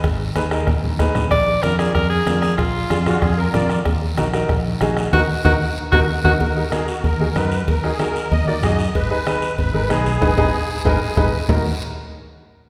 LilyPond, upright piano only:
\new Staff \with { instrumentName = "Upright piano" } { \time 4/4 \key ees \minor \tempo 4 = 189 r4 <ees' aes' ces''>8 <ees' aes' bes'>8 r4 <ees' aes' ces''>8 r8 | r4 <d' f' bes'>8 <d' f' bes'>8 r4 <d' f' bes'>8 r8 | r4 <d' f' aes'>8 <d' f' aes'>8 r4 <d' f' bes'>8 r8 | r4 <ees' ges' bes'>8 <ees' ges' bes'>8 r4 <ees' ges' aes'>8 r8 |
<ees' ges' bes'>8 r8 <ees' ges' bes'>8 r4 <ees' ges' bes'>8 r8 <ees' ges' bes'>8 | r8 <ees' ges' bes'>8 <ees' ges' bes'>8 r4 <ees' ges' aes'>8 <ees' ges' bes'>8 r8 | r8 <ees' ges' bes'>8 <ees' ges' aes'>8 r4 <ees' ges' bes'>8 <ees' ges' aes'>8 r8 | r8 <ees' aes' ces''>8 <ees' aes' ces''>8 r4 <ees' aes' bes'>8 <ees' aes' ces''>8 r8 |
<ees' aes' ces''>8 <ees' aes' ces''>8 r4 <ees' aes' ces''>8 r8 <ees' aes' ces''>8 r8 | <ees' ges' bes'>8 r2. r8 | }